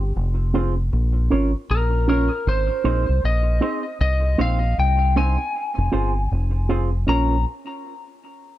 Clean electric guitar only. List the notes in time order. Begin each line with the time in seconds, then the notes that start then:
0.54 C4 F4 G#4 C5
1.30 C#4 F4 A#4 C#5
2.08 C#4 F4 A#4 C#5
2.84 C4 D#4 G#4 C5
3.61 C4 D#4 G#4 C5
4.38 C4 D#4 G4 C5
5.16 C4 D#4 G4 C5
5.92 C4 F4 G#4 C5
6.69 C4 F4 G#4 C5
7.07 C#4 F4 A#4 C#5